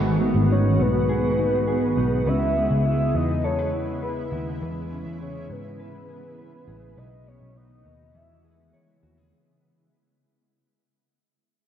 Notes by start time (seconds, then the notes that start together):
Already playing: G#1 G#2 D#3 G#3 B3 D#4 F#4 G#4
0.21 B3
0.35 G#1
0.50 D#4 C#5
0.79 B1 B3 B4
1.09 G#4
1.39 D#4
1.68 G#4
1.97 B1 D#4
2.26 C#2 C#3 E4 B4 E5
2.56 B3
2.71 C#2
2.85 E4 E5
3.15 E2 B3 D#5
3.44 A4 C#5
3.59 B4
3.74 E4
4.03 B4
4.32 D#2 E4
4.62 E2 E3 B4
4.91 C#4
5.06 E2
5.21 G#4 C#5
5.50 G#2 C#4 B4
5.80 B4
6.09 G#4
6.38 B4
6.67 A1 G#4
6.97 B1 B2 B3 B4 D#5
7.27 B3 C#5
7.42 B1
7.56 D#4 D#5
7.85 D#2 B3
8.14 E2 E3 E5
8.44 G#4
8.73 C#5
9.03 D#2 F#4
9.18 G#4